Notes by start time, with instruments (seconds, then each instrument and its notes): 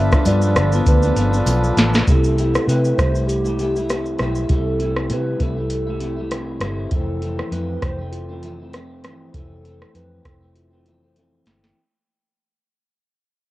Already playing: fingered electric bass G1, clean electric guitar G2 F3 B3, tonewheel organ D4 F4 A4 B4, soft synth lead E5
0.00 clean electric guitar D4
0.12 clean electric guitar B3 D4, kick, cross-stick, shaker
0.16 clean electric guitar F3
0.25 fingered electric bass G2, clean electric guitar G2 F3 B3 D4, soft synth lead D5, closed hi-hat, tambourine, shaker
0.41 clean electric guitar F3 B3 D4, shaker
0.56 fingered electric bass G1, cross-stick, closed hi-hat, shaker
0.72 clean electric guitar F3 B3 D4, shaker
0.86 fingered electric bass D2, soft synth lead B4, kick, closed hi-hat, shaker
1.03 clean electric guitar F3 B3 D4, shaker
1.16 fingered electric bass G1, clean electric guitar G2 F3 B3 D4, closed hi-hat, shaker
1.32 clean electric guitar F3 B3 D4, shaker
1.46 fingered electric bass B1, clean electric guitar G2 F3 B3 D4, closed hi-hat, tambourine, shaker
1.64 shaker
1.77 fingered electric bass A1, clean electric guitar G2 F3 B3 D4, snare, closed hi-hat, shaker
1.93 clean electric guitar F3 B3 D4, snare, shaker
2.08 fingered electric bass C2, clean electric guitar C3 G3 A3 E4, soft synth lead A4, kick, closed hi-hat, shaker
2.24 shaker
2.37 clean electric guitar C3 G3 A3 E4, closed hi-hat, shaker
2.55 cross-stick, shaker
2.67 fingered electric bass C3, clean electric guitar C3 G3 A3 E4, soft synth lead B4, closed hi-hat, shaker
2.85 shaker
2.97 fingered electric bass C2, clean electric guitar C3 G3 A3, soft synth lead C5, kick, cross-stick, closed hi-hat, shaker
3.02 clean electric guitar E4
3.14 clean electric guitar G3 A3 E4, shaker
3.27 soft synth lead G4, closed hi-hat, shaker
3.44 clean electric guitar G3 A3 E4, shaker
3.59 clean electric guitar C3 G3 A3 E4, closed hi-hat, shaker
3.76 clean electric guitar G3 A3 E4, shaker
3.89 clean electric guitar C3 G3 A3 E4, cross-stick, closed hi-hat, shaker
4.06 shaker
4.18 fingered electric bass B1, clean electric guitar G3 A3 E4, cross-stick, closed hi-hat, shaker
4.35 shaker
4.49 fingered electric bass C2, clean electric guitar C3 G3 A3 E4, soft synth lead A4, kick, closed hi-hat
4.79 clean electric guitar C3 G3 A3 E4, closed hi-hat
4.96 cross-stick
5.10 fingered electric bass C3, clean electric guitar C3 G3 A3 E4, soft synth lead B4, closed hi-hat
5.39 fingered electric bass C2, clean electric guitar C3 G3 A3 E4, soft synth lead A4, kick, closed hi-hat
5.57 clean electric guitar G3 A3 E4
5.70 soft synth lead A4, closed hi-hat
5.87 clean electric guitar G3 A3 E4
6.00 clean electric guitar C3 G3 A3 E4, closed hi-hat
6.16 clean electric guitar G3 A3 E4
6.31 clean electric guitar C3 G3 A3 E4, cross-stick, closed hi-hat
6.60 fingered electric bass G1, clean electric guitar C3 G3 A3 E4, cross-stick, closed hi-hat
6.91 fingered electric bass F1, clean electric guitar F2 E3 A3 C4, soft synth lead A4, kick, closed hi-hat
7.21 clean electric guitar F2 E3 A3 C4, closed hi-hat
7.39 cross-stick
7.51 clean electric guitar F2 E3 A3 C4, fingered electric bass F2, soft synth lead B4, closed hi-hat
7.81 fingered electric bass F1, clean electric guitar F2 E3 A3 C4, soft synth lead C5, kick, cross-stick, closed hi-hat
7.98 clean electric guitar E3 A3 C4
8.12 soft synth lead F4, closed hi-hat
8.29 clean electric guitar E3 A3 C4
8.43 clean electric guitar F2 E3 A3 C4, closed hi-hat
8.60 clean electric guitar E3 A3 C4
8.73 clean electric guitar F2 A3 C4, cross-stick, closed hi-hat
9.03 fingered electric bass G1, clean electric guitar F2 E3 A3 C4, cross-stick, closed hi-hat
9.33 fingered electric bass F1, clean electric guitar F2 E3 A3 C4, soft synth lead A4, kick, closed hi-hat
9.64 clean electric guitar F2 E3 A3 C4, closed hi-hat
9.82 cross-stick
9.94 clean electric guitar F2 E3 A3 C4, fingered electric bass F2, soft synth lead B4, closed hi-hat
10.23 fingered electric bass F1, clean electric guitar F2 E3 A3 C4, soft synth lead A4, kick, cross-stick, closed hi-hat
10.41 clean electric guitar E3 A3 C4
10.55 soft synth lead F4, closed hi-hat
10.71 clean electric guitar E3 A3 C4
10.85 clean electric guitar F2 E3 A3 C4, closed hi-hat
11.02 clean electric guitar E3 A3 C4
11.16 clean electric guitar F2 E3 A3 C4, closed hi-hat
11.45 fingered electric bass G1, clean electric guitar F2 E3 A3 C4, snare, closed hi-hat
11.64 snare